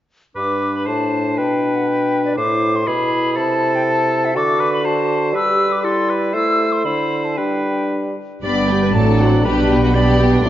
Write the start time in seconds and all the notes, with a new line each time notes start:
0.36 G2 D4 B4 D6
0.75 B5
0.87 A2 C5 A5
1.38 B2 B4 G5
1.75 F#5
1.88 G5
2.25 D5
2.37 A2 E4 C5 D6
2.76 C6
2.87 B2 G#4 B5
3.36 C3 A4 A5
3.75 G5
3.87 A5
4.25 E5
4.35 D3 F#4 A4 D6
4.59 B4
4.73 B5
4.84 F#4 C5 A5
5.34 G3 G4 B4 E6
5.72 D6
5.83 E4 A4 C6
6.10 B4
6.34 A3 E4 C5 E6
6.72 C6
6.85 D3 E4 C5 B5
7.24 A5
7.37 G3 D4 B4 G5
8.43 G1 G2 G3 B3 D4 D5 B5
8.69 B3 G4 G5
8.83 B4
8.94 A1 A2 F#3 A3 C4 D4 A4 D5 A5
9.20 F#3 C4 F#4 F#5
9.44 B1 B2 G3 B3 D4 G4 B4 B5
9.69 B3 G4 G5
9.84 F#4
9.95 G3 B3 D4 G4 D5 B5
10.20 B3 G4 G5
10.33 D4
10.44 A1 A2 F#3 A3 C4 E4 D5 A5 C6